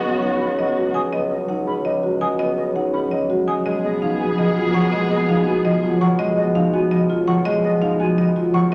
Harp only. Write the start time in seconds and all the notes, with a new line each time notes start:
Already playing: F#3 G#3 B3
0.05 C#4
0.23 F#3
0.41 C#4
0.59 F#3
0.77 G#3
0.95 F#3
1.13 B3
1.31 C#4
1.49 F#3
1.67 C#4
1.85 F#3
2.03 G#3
2.21 F#3
2.40 B3
2.58 C#4
2.76 F#3
2.94 C#4
3.12 F#3
3.30 G#3
3.47 F#3
3.66 G#3
3.83 B3
4.02 F3
4.20 B3
4.39 F3
4.57 F#3
4.75 F3
4.93 G#3
5.11 B3
5.29 F3
5.47 B3
5.65 F3
5.83 F#3
6.01 F3
6.19 G#3
6.37 B3
6.56 F3
6.73 B3
6.92 F3
7.10 F#3
7.28 F3
7.45 G#3
7.64 B3
7.82 F3
8.00 B3
8.18 F3
8.36 F#3
8.54 F3